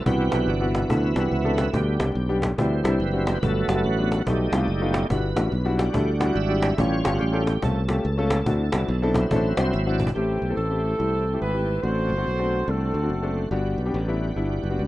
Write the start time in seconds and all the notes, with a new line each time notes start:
0.05 C2 C3 E3 B3 D4 E4 F#4 G4, cajon bass
0.31 B1 B3 D4 E4 F#4, cajon slap
0.48 G1 D4, cajon slap
0.61 B3 D4 E4 F#4
0.75 cajon slap
0.89 D2 B3 D4 E4 A4, cajon bass
1.16 C2 B3 D4 E4 G4, cajon slap
1.31 C#2, cajon slap
1.44 B3 D4 E4 A4
1.58 cajon slap
1.73 D2 D3 G3 B3 D4 G4, cajon bass
2.00 C2 G3 B3 D4 G4, cajon slap
2.15 B1, cajon slap
2.29 G3 B3 D4 G4
2.42 cajon bass, cajon slap
2.58 D2 D3 E3 G3 C4 D4 E4, cajon bass
2.83 C2 G3 C4 D4 E4, cajon slap
3.00 F#1 B4, cajon slap
3.13 G3 C4 D4 F#4
3.27 cajon slap
3.42 G1 G2 F#3 G3 A3 B3 F#4 A4, cajon bass
3.68 F#1 G3 A3 B3 F#4, cajon slap
3.84 A1 F#4, cajon slap
3.98 G3 A3 B3 D4
4.12 cajon slap
4.21 F#4
4.26 B1 B2 G3 A3 B3 D#4 G4, cajon bass
4.52 C2 A3 B3 D#4 F4, cajon slap
4.68 F#1, cajon slap
4.81 A3 B3 D#4 F4
4.94 cajon slap
5.10 G1 G2 G3 D4 E4 F#4 B4, cajon bass
5.35 A1 G3 D4 E4 F#4, cajon slap
5.52 B1, cajon slap
5.65 G3 D4 E4 F#4
5.78 G3 D4 F#4, cajon slap
5.93 D2 G3 D4 E4 A4, cajon bass
6.20 G3 D4 E4 F#4, cajon slap
6.35 G#1 E5, cajon slap
6.49 G3 D4 E4 G4
6.62 cajon slap
6.77 A1 A2 G3 A3 C#4 F4 G4 C#5, cajon bass
7.04 G1 A3 C#4 F4 G4, cajon slap
7.15 F#4
7.20 A1 G4, cajon slap
7.32 A3 C#4 F4 A4
7.47 cajon slap
7.62 C2 A3 C#4 F4 A4, cajon bass
7.89 A3 C#4 F4 G4, cajon slap
8.04 C#2, cajon slap
8.18 A3 C#4 F4 A4
8.30 cajon slap
8.46 D2 D3 C4 D4 E4 F#4 A4, cajon bass
8.72 C2 C4 D4 E4 F#4, cajon slap
8.88 B1, cajon slap
9.02 C4 D4 E4 A4
9.14 F#3 C4 E4, cajon bass, cajon slap
9.31 A1 C4 D4 E4 A4, cajon bass
9.57 C2 C4 D4 E4 F#4 C5, cajon slap
9.73 G#1 E5, cajon slap
9.86 C4 D4 E4 F#4 D5
10.00 cajon bass
10.07 cajon bass
10.15 A1 A2 E3 A3 C4 E4 G4
10.42 B1
10.49 A3 C4 E4 A4
10.57 A1 C4 E4 A4
10.70 A3 C4 E4 G4
10.98 C2 A3 C4 E4 G4
11.33 A3 C4 E4 G4
11.42 G#1 E4 G4 B4
11.54 A3 C4 E4 G4
11.82 A1 A2 D3 A3 C4 D4 F#4 C5
12.10 G1
12.17 A3 C4 D4 F#4
12.26 B1
12.39 A3 C4 D4 F#4
12.68 C2 A3 C4 D4 F#4 A4
12.94 D2
13.02 A3 C4 D4 F#4
13.10 F#1
13.23 A3 C4 D4 A4
13.51 G1 G2 G3 B3 D4 F4 F#4
13.57 F#4
13.78 B1
13.85 G3 B3 D4 G4
13.94 A1
14.08 G3 B3 D4 E4
14.36 G1 G3 B3 D4 E4
14.63 F#1
14.70 G3 B3 D4 F#4
14.79 C#2